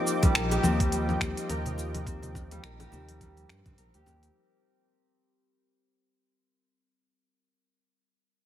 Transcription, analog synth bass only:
0.35 0.58 A#1 medium
0.64 1.16 D#2 loud
1.21 1.33 D#2 medium
1.50 2.59 D#2 loud
2.64 2.86 A#1 medium
2.92 3.45 D#2 loud
3.50 3.62 G2 medium
3.66 3.75 G2 loud
3.78 3.90 A#1 medium
3.94 4.04 D#2 medium
4.07 4.29 D#2 medium

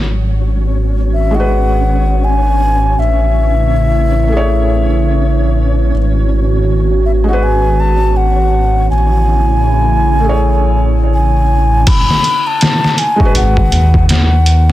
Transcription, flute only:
1.14 1.36 E5 medium
1.35 2.26 F#5 medium
2.24 3.01 G#5 loud
2.99 5.58 E5 medium
7.06 7.12 E5 medium
7.28 7.45 F#5 medium
7.43 7.81 G#5 loud
7.80 8.18 A5 loud
8.17 8.90 F#5 loud
8.90 10.83 G#5 loud
11.13 11.89 G#5 loud
11.88 12.48 B5 loud
12.47 13.00 A5 loud
12.99 13.36 G#5 loud
13.37 14.06 F#5 loud
14.10 14.72 F#5 medium

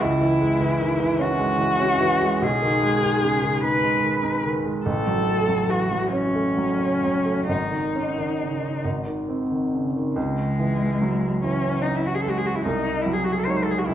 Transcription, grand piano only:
0.01 2.39 C#2 medium
0.21 0.54 E3 soft
0.41 0.73 G#3 soft
0.60 0.93 E3 soft
0.80 1.01 D#3 soft
1.00 1.33 E3 soft
1.19 1.52 C#4 soft
1.39 1.72 G#3 soft
1.59 1.92 E3 soft
1.80 2.13 C#4 soft
2.01 2.34 E3 soft
2.22 2.43 G#3 soft
2.42 4.81 B1 medium
2.62 2.95 D#3 soft
2.83 3.16 G#3 soft
3.03 3.36 D#3 soft
3.23 3.43 C#3 soft
3.43 3.75 D#3 soft
3.63 3.95 D#4 soft
3.83 4.16 G#3 soft
4.03 4.36 D#3 soft
4.23 4.56 D#4 soft
4.44 4.77 D#3 soft
4.65 4.86 G#3 soft
4.86 7.45 A1 soft
5.07 5.40 F#3 soft
5.27 5.61 A3 soft
5.48 5.82 F#3 soft
5.69 5.90 E3 soft
5.91 6.26 F#3 soft
6.13 6.48 C#4 soft
6.35 6.70 A3 soft
6.57 6.93 F#3 soft
6.79 7.16 C#4 soft
7.03 7.40 F#3 soft
7.25 7.49 A3 soft
7.49 8.80 G#1 soft
7.72 8.09 D#3 soft
7.95 8.32 C#4 soft
8.18 8.54 D#3 soft
8.41 8.63 C#3 soft
8.62 8.84 D#3 soft
8.85 10.12 G#1 soft
9.07 9.42 D#3 soft
9.29 9.64 C4 soft
9.51 9.86 D#3 soft
9.74 9.95 C#3 soft
9.96 10.17 D#3 soft
10.16 12.61 C#2 soft
10.59 11.28 E3 soft
11.01 11.44 F#3 soft
11.44 12.09 E3 soft
11.85 12.49 C#4 soft
12.26 12.65 G#3 soft
12.65 13.83 C2 soft
13.06 13.71 F#3 soft
13.47 13.83 G#3 soft
13.47 13.84 D#4 soft
13.88 13.94 C#2 soft

